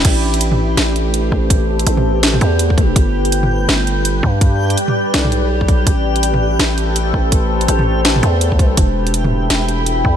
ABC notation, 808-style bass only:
X:1
M:4/4
L:1/8
Q:"Swing 16ths" 1/4=165
K:Am
V:1 name="808-style bass" clef=bass
A,,,4 A,,,3 A,,,- | A,,,2 A,,,3 E,,3 | G,,,4 G,,,3 G,,- | G,,2 z2 B,,,4 |
A,,,4 A,,,3 A,,,- | A,,,2 A,,,3 E,,3 | E,,,4 E,,,3 E,, |]